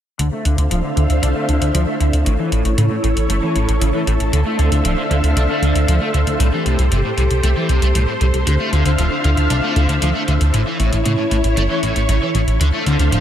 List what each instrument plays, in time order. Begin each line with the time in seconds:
0.19 analog synth bass D2, overdriven electric guitar D3, string machine D4 A4 C5 E5 F5, closed hi-hat
0.33 overdriven electric guitar A3
0.45 analog synth bass D2, overdriven electric guitar D3, closed hi-hat
0.58 analog synth bass D2, overdriven electric guitar D3, closed hi-hat
0.71 analog synth bass D1, overdriven electric guitar F3, closed hi-hat
0.84 overdriven electric guitar D3
0.97 analog synth bass D2, overdriven electric guitar D3, closed hi-hat
1.10 analog synth bass D2, closed hi-hat
1.23 analog synth bass C2, overdriven electric guitar D4, closed hi-hat
1.36 overdriven electric guitar A3
1.49 analog synth bass D2, overdriven electric guitar D3, closed hi-hat
1.62 analog synth bass D2, overdriven electric guitar D3, closed hi-hat
1.74 analog synth bass D2, overdriven electric guitar F3, closed hi-hat
1.87 overdriven electric guitar A3
2.00 analog synth bass D2, overdriven electric guitar D3, closed hi-hat
2.13 analog synth bass D2, closed hi-hat
2.26 analog synth bass A1, overdriven electric guitar A2, string machine E4 C#5, closed hi-hat
2.39 overdriven electric guitar E3
2.52 analog synth bass A1, overdriven electric guitar A2, closed hi-hat
2.65 analog synth bass A1, overdriven electric guitar A2, closed hi-hat
2.78 analog synth bass A2, overdriven electric guitar C#3, closed hi-hat
2.91 overdriven electric guitar A2
3.04 analog synth bass A1, overdriven electric guitar A2, closed hi-hat
3.17 analog synth bass A1, closed hi-hat
3.30 analog synth bass G1, overdriven electric guitar A3, closed hi-hat
3.43 overdriven electric guitar E3
3.56 analog synth bass A1, overdriven electric guitar A2, closed hi-hat
3.69 analog synth bass A1, overdriven electric guitar A2, closed hi-hat
3.81 analog synth bass A1, overdriven electric guitar C#3, closed hi-hat
3.94 overdriven electric guitar E3
4.07 analog synth bass A1, overdriven electric guitar A2, closed hi-hat
4.20 analog synth bass A1, closed hi-hat
4.33 analog synth bass D2, overdriven electric guitar D3, string machine D4 C5 E5 F5, closed hi-hat
4.46 overdriven electric guitar A3
4.59 analog synth bass D2, overdriven electric guitar D3, closed hi-hat
4.72 analog synth bass D2, overdriven electric guitar D3, closed hi-hat
4.85 analog synth bass D1, overdriven electric guitar F3, closed hi-hat
4.98 overdriven electric guitar D3
5.11 analog synth bass D2, overdriven electric guitar D3, closed hi-hat
5.24 analog synth bass D2, closed hi-hat
5.37 analog synth bass C2, overdriven electric guitar D4, closed hi-hat
5.50 overdriven electric guitar A3
5.62 analog synth bass D2, overdriven electric guitar D3, closed hi-hat
5.75 analog synth bass D2, overdriven electric guitar D3, closed hi-hat
5.88 analog synth bass D2, overdriven electric guitar F3, closed hi-hat
6.02 overdriven electric guitar A3
6.14 analog synth bass D2, overdriven electric guitar D3, closed hi-hat
6.27 analog synth bass D2, closed hi-hat
6.40 analog synth bass C2, overdriven electric guitar A2, string machine G4, closed hi-hat
6.53 overdriven electric guitar E3
6.66 analog synth bass C2, overdriven electric guitar A2, closed hi-hat
6.79 analog synth bass C2, overdriven electric guitar A2, closed hi-hat
6.92 analog synth bass G1, overdriven electric guitar C3, closed hi-hat
7.05 overdriven electric guitar A2
7.18 analog synth bass C2, overdriven electric guitar A2, closed hi-hat
7.31 analog synth bass C2, closed hi-hat
7.43 analog synth bass C2, overdriven electric guitar A3, closed hi-hat
7.57 overdriven electric guitar E3
7.69 analog synth bass C2, overdriven electric guitar C3, closed hi-hat
7.82 analog synth bass C2, overdriven electric guitar A3, closed hi-hat
7.95 analog synth bass C2, overdriven electric guitar A2, closed hi-hat
8.08 overdriven electric guitar A2
8.21 analog synth bass C2, overdriven electric guitar A2, closed hi-hat
8.34 analog synth bass C2, closed hi-hat
8.47 analog synth bass D2, overdriven electric guitar D3, string machine D4 E5 F5, closed hi-hat
8.60 overdriven electric guitar A3
8.73 analog synth bass D2, overdriven electric guitar D3, closed hi-hat
8.86 analog synth bass D2, overdriven electric guitar D3, closed hi-hat
8.98 analog synth bass D1, overdriven electric guitar F3, closed hi-hat
9.12 overdriven electric guitar D3
9.24 analog synth bass D2, overdriven electric guitar D3, closed hi-hat
9.37 analog synth bass D2, closed hi-hat
9.50 analog synth bass C2, overdriven electric guitar D4, closed hi-hat
9.64 overdriven electric guitar A3
9.76 analog synth bass D2, overdriven electric guitar D3, closed hi-hat
9.89 analog synth bass D2, overdriven electric guitar D3, closed hi-hat
10.02 analog synth bass D2, overdriven electric guitar F3, closed hi-hat
10.15 overdriven electric guitar A3
10.28 analog synth bass D2, overdriven electric guitar D3, closed hi-hat
10.41 analog synth bass D2, closed hi-hat
10.54 analog synth bass A1, overdriven electric guitar A2, string machine E4 C#5, closed hi-hat
10.67 overdriven electric guitar E3
10.80 analog synth bass A1, overdriven electric guitar A2, closed hi-hat
10.93 analog synth bass A1, overdriven electric guitar A2, closed hi-hat
11.06 analog synth bass A2, overdriven electric guitar C#3, closed hi-hat
11.19 overdriven electric guitar A2
11.31 analog synth bass A1, overdriven electric guitar A2, closed hi-hat
11.44 analog synth bass A1, closed hi-hat
11.57 analog synth bass G1, overdriven electric guitar A3, closed hi-hat
11.70 overdriven electric guitar E3
11.83 analog synth bass A1, overdriven electric guitar A2, closed hi-hat
11.96 analog synth bass A1, overdriven electric guitar A2, closed hi-hat
12.09 analog synth bass A1, overdriven electric guitar C#3, closed hi-hat
12.22 overdriven electric guitar E3
12.35 analog synth bass A1, overdriven electric guitar A2, closed hi-hat
12.48 analog synth bass A1, closed hi-hat
12.61 analog synth bass D2, overdriven electric guitar D3, string machine D4 A4 C5 E5 F5, closed hi-hat
12.74 overdriven electric guitar A3
12.86 analog synth bass D2, overdriven electric guitar D3, closed hi-hat
12.99 analog synth bass D2, overdriven electric guitar D3, closed hi-hat
13.12 analog synth bass D1, overdriven electric guitar F3, closed hi-hat